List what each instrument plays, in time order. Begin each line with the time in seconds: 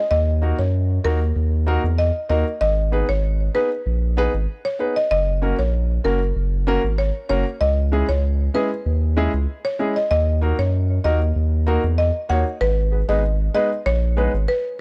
0.11 sub bass D#2, marimba D#5
0.42 grand piano A#3 D#4 F#4 A#4
0.59 sub bass F#2, marimba C#5
1.04 sub bass D#2, grand piano A#3 D#4 F#4 A#4, marimba A#4
1.36 sub bass D#2
1.67 grand piano A#3 D#4 F#4 A#4
1.84 sub bass E2
1.98 marimba D#5
2.29 sub bass D#2, grand piano A#3 D#4 F#4 A#4, marimba D#5
2.61 sub bass G#1, marimba D#5
2.92 grand piano B3 D#4 G#4 B4
3.09 sub bass G#1, marimba C#5
3.54 grand piano B3 D#4 G#4 B4, marimba B4
3.86 sub bass A#1
4.17 grand piano B3 D#4 G#4 B4
4.34 sub bass G#1
4.65 marimba C#5
4.79 grand piano B3 D#4 G#4 B4
4.96 marimba D#5
5.11 sub bass F#1, marimba D#5
5.42 grand piano A#3 C#4 F#4 A#4
5.59 sub bass A#1, marimba C#5
6.04 sub bass F#1, grand piano A#3 C#4 F#4 A#4, marimba A#4
6.36 sub bass F#1
6.67 grand piano A#3 C#4 F#4 A#4
6.84 sub bass G#1
6.98 marimba C#5
7.29 sub bass F#1, grand piano A#3 C#4 F#4 A#4, marimba C#5
7.61 sub bass C#2, marimba D#5
7.92 grand piano G#3 C#4 E4 G#4
8.09 sub bass C#2, marimba C#5
8.54 grand piano G#3 C#4 E4 G#4, marimba B4
8.86 sub bass D#2
9.17 grand piano G#3 C#4 E4 G#4
9.34 sub bass C#2
9.65 marimba C#5
9.79 grand piano G#3 C#4 E4 G#4
9.96 marimba D#5
10.11 sub bass D#2, marimba D#5
10.41 grand piano A#3 D#4 F#4 A#4
10.59 sub bass F#2, marimba C#5
11.04 sub bass D#2, grand piano A#3 D#4 F#4 A#4, marimba D#5
11.36 sub bass D#2
11.67 grand piano A#3 D#4 F#4 A#4
11.84 sub bass E2
11.98 marimba D#5
12.29 sub bass D#2, grand piano A#3 D#4 F#4 C#5, marimba F#5
12.61 sub bass G#1, marimba B4
12.92 grand piano G#4 B4
13.08 sub bass G#1, grand piano G#3 B3 D#4 G#4 B4, marimba D#5
13.54 grand piano G#3 B3 D#4 G#4 B4, marimba D#5
13.86 sub bass A#1, marimba C#5
14.17 grand piano G#3 B3 D#4 G#4 B4
14.34 sub bass G#1
14.48 marimba B4